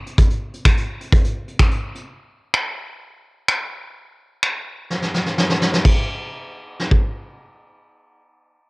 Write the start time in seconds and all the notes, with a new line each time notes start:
0.06 closed hi-hat
0.18 kick, closed hi-hat
0.30 closed hi-hat
0.54 closed hi-hat
0.65 finger snap, kick, closed hi-hat
0.77 closed hi-hat
1.01 closed hi-hat
1.12 kick, closed hi-hat
1.24 closed hi-hat
1.48 closed hi-hat
1.59 finger snap, kick, closed hi-hat
1.71 closed hi-hat
1.95 closed hi-hat
2.54 finger snap
3.48 finger snap
4.43 finger snap
4.90 snare
5.02 snare
5.14 snare
5.26 snare
5.38 snare
5.50 snare
5.61 snare
5.73 snare
5.85 kick, ride
6.79 snare
6.91 kick